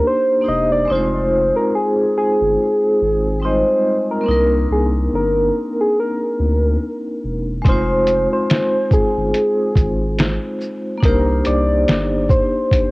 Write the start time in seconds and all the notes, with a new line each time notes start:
Already playing: A#3 D4 D#4 G4 C5
0.07 C5
0.41 A#3 D4 D#4 G4
0.46 E1 C5 D#5
0.72 D5
0.85 G#3 C4
0.90 F1 D#4 F4 C5
0.95 C5
1.56 A#4
1.75 G#4
2.18 G#4
2.41 G1
3.02 G#1
3.40 G3 C4 D#4
3.44 G#3 F4 C5 D#5
4.11 A#4
4.21 A#3 C4
4.26 C2 D4 D#4
4.31 A#4
4.71 C2 G#4
5.13 G1 A#4
5.81 G#4
6.00 A#4
6.39 D2
7.24 E1
7.62 F1 G#3 C4, kick, closed hi-hat
7.67 D#4 F4 C5
7.72 C5
8.07 closed hi-hat, shaker
8.33 C5
8.50 snare, closed hi-hat
8.91 G#4, kick, shaker
9.17 G1
9.34 closed hi-hat
9.76 G#1, kick, closed hi-hat, shaker
10.19 snare, closed hi-hat
10.61 shaker
10.97 A#3 D4
11.03 C2 D#4 G4 A#4, kick, closed hi-hat
11.08 C5
11.45 C2 D5, closed hi-hat, shaker
11.88 G1, snare, closed hi-hat
12.29 C5, kick, shaker
12.71 kick, closed hi-hat